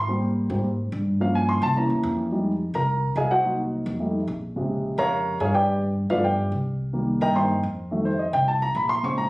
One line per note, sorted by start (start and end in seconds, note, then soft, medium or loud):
0.00 0.45 G#1 medium
0.00 0.21 C6 loud
0.08 0.49 G3 medium
0.08 0.49 A#3 soft
0.08 0.50 C4 medium
0.50 0.89 G#2 medium
0.50 0.63 G3 soft
0.50 0.63 A#3 soft
0.50 0.64 C4 medium
0.92 1.57 G2 medium
1.20 1.74 F3 medium
1.20 1.74 A#3 medium
1.20 1.75 C#4 medium
1.20 1.35 F5 medium
1.35 1.49 G#5 medium
1.49 1.62 C6 medium
1.62 1.88 C2 medium
1.62 1.76 A5 loud
1.76 2.30 E3 medium
1.76 2.30 A#3 medium
1.76 2.30 C#4 medium
1.76 2.03 A#5 medium
1.90 2.03 E2 medium
2.03 2.69 F2 loud
2.32 2.51 G3 medium
2.32 2.51 G#3 soft
2.32 2.51 D#4 medium
2.74 3.13 C2 medium
2.74 3.14 A#4 medium
2.74 3.14 A#5 loud
3.16 3.81 C2 medium
3.16 3.31 G#4 medium
3.16 3.30 D#5 medium
3.16 3.31 F5 medium
3.16 3.30 G#5 medium
3.31 3.57 F#4 medium
3.31 3.57 C5 medium
3.31 3.57 D#5 medium
3.31 3.57 F#5 medium
3.44 3.97 F#3 medium
3.44 3.97 A#3 medium
3.44 3.98 D#4 medium
3.86 4.25 F2 loud
4.00 4.19 G3 medium
4.00 4.19 A3 soft
4.00 4.19 D#4 medium
4.28 4.92 A#1 medium
4.56 5.65 C3 medium
4.56 5.64 C#3 medium
4.56 5.64 G#3 medium
4.98 5.37 F2 medium
4.98 5.38 A#4 medium
4.98 5.38 C#5 medium
4.98 5.38 F5 medium
4.98 5.37 A#5 loud
5.40 6.05 G2 medium
5.40 5.54 G#4 medium
5.40 5.54 C#5 medium
5.40 5.54 F5 medium
5.40 5.54 G#5 medium
5.54 5.81 G4 medium
5.54 5.81 B4 medium
5.54 5.81 D5 medium
5.54 5.80 G5 loud
6.10 6.49 G2 medium
6.10 6.28 F3 medium
6.10 6.29 A3 medium
6.10 6.29 B3 medium
6.10 6.24 F4 medium
6.10 6.23 B4 medium
6.10 6.23 D5 medium
6.10 6.24 F5 loud
6.24 6.51 G4 medium
6.24 6.51 B4 medium
6.24 6.50 D5 medium
6.24 6.50 G5 medium
6.52 7.17 C2 medium
6.93 7.33 D#3 medium
6.93 7.34 G3 medium
6.93 7.34 A#3 medium
7.21 7.61 G2 medium
7.21 7.36 A#4 medium
7.21 7.35 D#5 medium
7.21 7.35 G5 medium
7.21 7.35 A#5 loud
7.35 7.48 D#3 soft
7.35 7.48 G3 soft
7.35 7.49 A#3 medium
7.35 7.62 C5 medium
7.35 7.62 D#5 medium
7.35 7.62 G5 medium
7.35 7.62 C6 medium
7.63 8.28 F2 medium
7.91 8.10 D#3 medium
7.91 8.11 G3 medium
7.91 8.11 A3 medium
8.05 8.19 C5 medium
8.19 8.33 D#5 medium
8.33 8.73 C2 medium
8.33 8.47 G5 medium
8.48 8.62 A5 medium
8.62 8.76 A#5 loud
8.75 9.30 A#1 medium
8.75 8.90 B5 medium
8.89 9.03 C6 loud
9.03 9.22 C#3 medium
9.03 9.22 G#3 medium
9.03 9.23 C4 medium
9.03 9.18 C#6 loud
9.18 9.30 A#5 loud